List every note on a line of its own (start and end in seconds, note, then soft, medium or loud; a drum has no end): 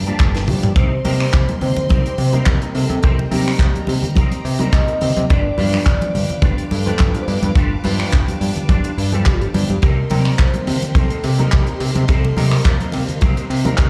0.00 0.12 G2 medium
0.00 5.25 A#3 medium
0.00 0.20 A#4 loud
0.00 0.73 F5 medium
0.00 0.74 A5 medium
0.00 0.73 D6 medium
0.06 0.45 F3 medium
0.06 0.45 G3 medium
0.06 0.45 A#3 medium
0.06 0.45 D4 medium
0.06 0.42 D4 medium
0.06 0.42 F4 medium
0.06 0.42 G4 medium
0.06 0.42 A4 medium
0.06 0.45 A5 medium
0.06 closed hi-hat medium
0.20 0.50 G1 medium
0.20 kick loud
0.20 clap loud
0.20 closed hi-hat medium
0.35 snare medium
0.35 closed hi-hat soft
0.47 0.59 G2 medium
0.47 0.65 F3 medium
0.47 0.65 G3 medium
0.47 0.65 A#3 medium
0.47 0.66 D4 medium
0.47 0.66 G4 loud
0.47 open hi-hat loud
0.47 mid tom medium
0.63 0.73 G2 medium
0.63 closed hi-hat medium
0.63 mid tom medium
0.76 0.97 C2 loud
0.76 0.92 C4 loud
0.76 0.92 D#4 loud
0.76 0.92 G4 loud
0.76 0.92 A#4 loud
0.76 1.57 C5 loud
0.76 5.25 D#5 medium
0.76 7.52 G5 medium
0.76 3.01 C6 loud
0.76 kick loud
0.76 closed hi-hat medium
0.76 muted conga medium
1.04 1.26 C3 loud
1.04 1.45 G3 medium
1.04 1.45 A#3 medium
1.04 1.45 C4 medium
1.04 1.33 C4 medium
1.04 1.33 D#4 medium
1.04 1.45 D#4 medium
1.04 1.33 G4 medium
1.04 1.33 A#4 loud
1.04 1.45 A#4 loud
1.04 open hi-hat loud
1.04 muted conga medium
1.04 high conga medium
1.20 finger snap medium
1.33 1.44 C2 medium
1.33 kick loud
1.33 clap loud
1.33 closed hi-hat loud
1.48 1.87 G3 medium
1.48 1.87 A#3 medium
1.48 1.87 C4 medium
1.48 1.87 D#4 medium
1.48 1.87 A#4 medium
1.48 closed hi-hat medium
1.48 muted conga medium
1.48 high conga medium
1.61 1.72 C3 medium
1.61 2.49 C5 loud
1.61 muted clean electric guitar stroke soft
1.61 open hi-hat loud
1.61 low conga medium
1.77 closed hi-hat medium
1.77 muted conga medium
1.77 low conga medium
1.89 2.01 C2 medium
1.89 2.07 G3 medium
1.89 2.07 A#3 medium
1.89 2.12 C4 medium
1.89 2.07 C4 medium
1.89 2.12 D#4 medium
1.89 2.07 D#4 medium
1.89 2.12 G4 medium
1.89 2.07 A#4 medium
1.89 2.12 A#4 medium
1.89 kick loud
1.89 closed hi-hat medium
1.89 high conga medium
2.06 closed hi-hat medium
2.18 2.39 C3 loud
2.18 open hi-hat loud
2.18 muted conga medium
2.33 2.58 G3 loud
2.33 2.58 A#3 medium
2.33 2.58 C4 medium
2.33 2.68 C4 medium
2.33 2.58 D#4 medium
2.33 2.68 D#4 medium
2.33 2.68 G4 medium
2.33 2.68 A#4 loud
2.33 2.58 A#4 loud
2.33 closed hi-hat medium
2.33 high conga medium
2.46 2.57 C2 medium
2.46 2.77 A#4 loud
2.46 kick loud
2.46 clap loud
2.46 closed hi-hat medium
2.46 muted conga medium
2.61 3.28 G3 medium
2.61 3.28 A#3 medium
2.61 3.28 C4 medium
2.61 3.29 D#4 medium
2.61 3.29 A#4 medium
2.61 closed hi-hat medium
2.75 2.85 C3 loud
2.75 3.05 A4 loud
2.75 open hi-hat loud
2.90 2.99 C3 loud
2.90 closed hi-hat medium
2.90 muted conga medium
2.90 high conga medium
3.03 3.24 C2 loud
3.03 3.18 C4 loud
3.03 3.18 D#4 medium
3.03 3.18 G4 loud
3.03 3.33 A#4 loud
3.03 3.18 C5 loud
3.03 5.27 A#5 loud
3.03 kick loud
3.03 closed hi-hat medium
3.19 muted conga medium
3.31 3.52 C3 loud
3.31 3.71 G3 loud
3.31 3.71 A#3 medium
3.31 3.71 C4 medium
3.31 3.60 C4 medium
3.31 3.71 D#4 medium
3.31 3.60 D#4 medium
3.31 3.60 G4 medium
3.31 4.45 G4 loud
3.31 3.60 A#4 loud
3.31 3.72 A#4 loud
3.31 open hi-hat loud
3.31 high conga medium
3.48 finger snap medium
3.59 3.70 C2 medium
3.59 kick loud
3.59 clap loud
3.59 closed hi-hat loud
3.59 muted conga medium
3.74 4.13 G3 medium
3.74 4.13 A#3 medium
3.74 4.13 C4 medium
3.74 4.13 D#4 medium
3.74 4.13 A#4 medium
3.74 closed hi-hat soft
3.74 high conga medium
3.87 3.99 C3 medium
3.87 muted clean electric guitar stroke soft
3.87 open hi-hat loud
3.87 muted conga medium
4.03 closed hi-hat medium
4.03 low conga loud
4.15 4.27 C2 medium
4.15 4.33 G3 medium
4.15 4.33 A#3 medium
4.15 4.38 C4 medium
4.15 4.33 C4 medium
4.15 4.33 D#4 medium
4.15 4.38 D#4 medium
4.15 4.38 G4 medium
4.15 4.33 A#4 medium
4.15 4.38 A#4 medium
4.15 kick loud
4.15 closed hi-hat medium
4.15 high conga loud
4.32 closed hi-hat medium
4.32 muted conga medium
4.45 4.65 C3 loud
4.45 open hi-hat loud
4.59 4.84 G3 loud
4.59 4.84 A#3 medium
4.59 4.84 C4 medium
4.59 4.95 C4 medium
4.59 4.85 D#4 medium
4.59 4.95 D#4 medium
4.59 4.95 G4 medium
4.59 4.95 A#4 loud
4.59 4.85 A#4 loud
4.59 closed hi-hat medium
4.59 muted conga medium
4.59 high conga medium
4.72 4.83 C2 medium
4.72 5.26 D#5 loud
4.72 kick loud
4.72 clap loud
4.72 closed hi-hat medium
4.87 5.28 G3 medium
4.87 5.28 A#3 medium
4.87 5.28 C4 medium
4.87 5.28 D#4 medium
4.87 5.28 A#4 medium
4.87 closed hi-hat soft
5.01 5.12 C3 loud
5.01 open hi-hat loud
5.01 muted conga medium
5.01 low conga medium
5.17 5.26 C3 loud
5.17 closed hi-hat soft
5.17 high conga loud
5.29 5.50 G1 loud
5.29 5.45 D4 loud
5.29 5.45 F4 loud
5.29 5.45 G4 loud
5.29 9.78 B4 medium
5.29 5.45 B4 loud
5.29 5.82 D5 loud
5.29 9.78 F5 medium
5.29 9.78 D6 medium
5.29 kick loud
5.29 closed hi-hat medium
5.29 muted conga medium
5.57 5.78 G2 loud
5.57 5.97 F3 medium
5.57 5.97 G3 medium
5.57 5.98 B3 medium
5.57 5.98 D4 medium
5.57 5.86 D4 medium
5.57 5.86 F4 medium
5.57 5.86 G4 medium
5.57 5.98 G4 loud
5.57 5.86 B4 loud
5.57 open hi-hat loud
5.57 high conga loud
5.73 finger snap medium
5.73 muted conga soft
5.86 5.97 G1 medium
5.86 6.39 D5 loud
5.86 kick loud
5.86 clap loud
6.01 6.39 F3 medium
6.01 6.39 G3 medium
6.01 6.40 B3 medium
6.01 6.40 D4 medium
6.01 6.40 G4 medium
6.01 closed hi-hat medium
6.01 muted conga medium
6.01 high conga medium
6.14 6.25 G2 medium
6.14 muted clean electric guitar stroke soft
6.14 open hi-hat loud
6.14 low conga medium
6.30 closed hi-hat medium
6.30 low conga medium
6.42 6.53 G1 medium
6.42 6.59 F3 medium
6.42 6.59 G3 medium
6.42 6.60 B3 medium
6.42 6.64 D4 medium
6.42 6.60 D4 medium
6.42 6.64 F4 medium
6.42 6.60 G4 medium
6.42 6.64 G4 medium
6.42 6.56 B4 medium
6.42 6.65 B4 medium
6.42 kick loud
6.42 closed hi-hat medium
6.42 muted conga soft
6.42 high conga loud
6.58 closed hi-hat medium
6.71 6.92 G2 medium
6.71 7.18 A4 loud
6.71 open hi-hat loud
6.71 muted conga medium
6.86 7.11 F3 loud
6.86 7.11 G3 medium
6.86 7.11 B3 loud
6.86 7.11 D4 medium
6.86 7.21 D4 medium
6.86 7.21 F4 medium
6.86 7.21 G4 medium
6.86 7.11 G4 loud
6.86 7.21 B4 medium
6.86 closed hi-hat medium
6.86 high conga medium
6.99 7.10 G1 loud
6.99 kick loud
6.99 clap loud
6.99 closed hi-hat medium
7.14 7.81 F3 medium
7.14 7.81 G3 medium
7.14 7.81 B3 medium
7.14 7.81 D4 medium
7.14 7.82 G4 medium
7.14 closed hi-hat medium
7.14 muted conga medium
7.21 7.30 C5 medium
7.28 7.38 G2 medium
7.28 7.85 B4 medium
7.28 open hi-hat loud
7.42 7.52 G2 loud
7.42 closed hi-hat medium
7.42 muted conga medium
7.42 high conga medium
7.55 7.76 G1 loud
7.55 7.71 D4 loud
7.55 7.71 F4 loud
7.55 7.71 G4 medium
7.55 7.71 A4 loud
7.55 9.80 A5 medium
7.55 kick loud
7.55 closed hi-hat medium
7.84 8.05 G2 loud
7.84 8.24 F3 loud
7.84 8.24 G3 medium
7.84 8.24 B3 medium
7.84 8.24 D4 medium
7.84 8.13 D4 medium
7.84 8.13 F4 medium
7.84 8.13 G4 medium
7.84 8.24 G4 loud
7.84 8.13 B4 loud
7.84 open hi-hat loud
7.84 muted conga medium
7.84 high conga loud
8.00 finger snap medium
8.12 8.24 G1 medium
8.12 kick loud
8.12 clap loud
8.12 closed hi-hat medium
8.12 muted conga medium
8.27 8.66 F3 medium
8.27 8.66 G3 medium
8.27 8.66 B3 medium
8.27 8.66 D4 medium
8.27 8.66 G4 medium
8.27 closed hi-hat medium
8.27 high conga medium
8.41 8.52 G2 medium
8.41 muted clean electric guitar stroke soft
8.41 open hi-hat loud
8.56 closed hi-hat medium
8.56 muted conga medium
8.56 low conga medium
8.69 8.80 G1 medium
8.69 8.86 F3 medium
8.69 8.86 G3 medium
8.69 8.86 B3 medium
8.69 8.91 D4 loud
8.69 8.86 D4 medium
8.69 8.91 F4 medium
8.69 8.86 G4 medium
8.69 8.91 G4 medium
8.69 8.91 D5 loud
8.69 kick loud
8.69 closed hi-hat medium
8.69 high conga loud
8.84 closed hi-hat medium
8.84 muted conga medium
8.98 9.28 G2 medium
8.98 open hi-hat loud
9.12 9.51 F3 medium
9.12 9.51 G3 medium
9.12 9.51 B3 medium
9.12 9.51 D4 medium
9.12 9.47 D4 medium
9.12 9.47 F4 medium
9.12 9.48 G4 medium
9.12 9.48 A4 medium
9.12 9.51 A4 medium
9.12 closed hi-hat medium
9.12 high conga medium
9.26 9.46 G1 medium
9.26 9.35 G4 medium
9.26 kick loud
9.26 clap loud
9.26 closed hi-hat medium
9.26 muted conga medium
9.33 9.42 F4 medium
9.41 9.84 G4 medium
9.41 closed hi-hat medium
9.53 9.65 G2 loud
9.53 9.71 F3 medium
9.53 9.71 G3 medium
9.53 9.71 B3 medium
9.53 9.71 D4 medium
9.53 9.71 G4 loud
9.53 open hi-hat loud
9.53 muted conga medium
9.53 low conga medium
9.69 9.79 G2 medium
9.69 closed hi-hat medium
9.69 high conga medium
9.82 10.03 C2 loud
9.82 9.97 C4 loud
9.82 9.97 D#4 loud
9.82 9.97 G4 medium
9.82 13.90 A#4 medium
9.82 10.41 A#4 loud
9.82 9.97 A#4 loud
9.82 13.90 D#5 medium
9.82 12.07 G5 medium
9.82 13.90 C6 medium
9.82 kick loud
9.82 closed hi-hat medium
9.82 ride medium
9.82 muted conga soft
10.10 10.31 C3 loud
10.10 10.50 G3 medium
10.10 10.50 A#3 medium
10.10 10.50 C4 medium
10.10 10.39 C4 medium
10.10 10.50 D#4 medium
10.10 10.39 D#4 medium
10.10 10.39 G4 medium
10.10 10.39 A#4 loud
10.10 10.51 A#4 loud
10.10 open hi-hat loud
10.10 ride medium
10.10 muted conga medium
10.10 high conga loud
10.25 finger snap medium
10.39 10.50 C2 medium
10.39 10.97 C5 loud
10.39 kick loud
10.39 clap loud
10.39 ride medium
10.54 10.92 G3 medium
10.54 10.92 A#3 medium
10.54 10.92 C4 medium
10.54 10.93 D#4 medium
10.54 10.93 A#4 medium
10.54 closed hi-hat medium
10.54 muted conga medium
10.54 high conga medium
10.67 10.78 C3 medium
10.67 open hi-hat loud
10.67 ride medium
10.67 low conga medium
10.82 closed hi-hat medium
10.82 muted conga medium
10.82 low conga medium
10.95 11.06 C2 medium
10.95 11.12 G3 medium
10.95 11.12 A#3 medium
10.95 11.17 C4 loud
10.95 11.12 C4 medium
10.95 11.17 D#4 medium
10.95 11.12 D#4 medium
10.95 11.17 G4 medium
10.95 11.26 A4 loud
10.95 11.13 A#4 medium
10.95 11.17 C5 medium
10.95 kick loud
10.95 closed hi-hat medium
10.95 ride medium
10.95 high conga medium
11.10 closed hi-hat medium
11.24 11.45 C3 loud
11.24 12.11 G4 loud
11.24 open hi-hat loud
11.24 ride medium
11.24 muted conga medium
11.38 11.63 G3 loud
11.38 11.63 A#3 medium
11.38 11.64 C4 medium
11.38 11.74 C4 medium
11.38 11.64 D#4 medium
11.38 11.74 D#4 medium
11.38 11.74 G4 medium
11.38 11.74 A#4 medium
11.38 11.64 A#4 loud
11.38 closed hi-hat medium
11.38 high conga medium
11.52 11.63 C2 medium
11.52 kick loud
11.52 clap loud
11.52 closed hi-hat medium
11.52 ride medium
11.52 muted conga medium
11.66 12.33 G3 medium
11.66 12.33 A#3 medium
11.66 12.34 C4 medium
11.66 12.34 D#4 medium
11.66 12.34 A#4 medium
11.66 closed hi-hat medium
11.80 11.91 C3 medium
11.80 open hi-hat loud
11.80 ride medium
11.95 12.05 C3 loud
11.95 closed hi-hat soft
11.95 muted conga medium
11.95 high conga medium
12.08 12.29 C2 loud
12.08 12.24 C4 loud
12.08 12.24 D#4 loud
12.08 12.24 G4 medium
12.08 12.39 A4 loud
12.08 12.24 C5 loud
12.08 13.90 F5 medium
12.08 kick loud
12.08 closed hi-hat medium
12.08 ride medium
12.25 muted conga medium
12.36 12.57 C3 loud
12.36 12.77 G3 loud
12.36 12.77 A#3 medium
12.36 12.77 C4 medium
12.36 12.65 C4 medium
12.36 12.77 D#4 medium
12.36 12.65 D#4 medium
12.36 12.65 G4 medium
12.36 12.65 A#4 loud
12.36 12.94 A#4 loud
12.36 12.77 A#4 loud
12.36 open hi-hat loud
12.36 ride medium
12.36 high conga loud
12.51 finger snap medium
12.64 12.76 C2 medium
12.64 kick loud
12.64 clap loud
12.64 closed hi-hat medium
12.64 ride medium
12.64 muted conga medium
12.80 13.18 G3 medium
12.80 13.19 A#3 medium
12.80 13.19 C4 medium
12.80 13.19 D#4 medium
12.80 13.19 A#4 medium
12.80 closed hi-hat medium
12.80 high conga medium
12.92 13.04 C3 medium
12.92 muted clean electric guitar stroke soft
12.92 open hi-hat medium
12.92 ride medium
12.92 muted conga medium
13.08 closed hi-hat medium
13.08 low conga medium
13.21 13.33 C2 medium
13.21 13.38 G3 medium
13.21 13.39 A#3 medium
13.21 13.44 C4 loud
13.21 13.39 C4 medium
13.21 13.44 D#4 medium
13.21 13.39 D#4 medium
13.21 13.44 G4 medium
13.21 13.39 A#4 loud
13.21 13.44 C5 medium
13.21 kick loud
13.21 closed hi-hat medium
13.21 ride medium
13.21 high conga medium
13.37 closed hi-hat medium
13.37 muted conga medium
13.50 13.71 C3 loud
13.50 open hi-hat loud
13.50 ride loud
13.64 13.90 G3 loud
13.64 13.90 A#3 loud
13.64 13.90 C4 medium
13.64 13.90 D#4 loud
13.64 13.90 D#4 medium
13.64 13.90 G4 medium
13.64 13.90 A#4 loud
13.64 closed hi-hat medium
13.64 muted conga medium
13.64 high conga medium
13.77 13.89 C2 medium
13.77 13.90 G4 loud
13.77 kick loud
13.77 clap loud
13.77 closed hi-hat loud
13.77 ride medium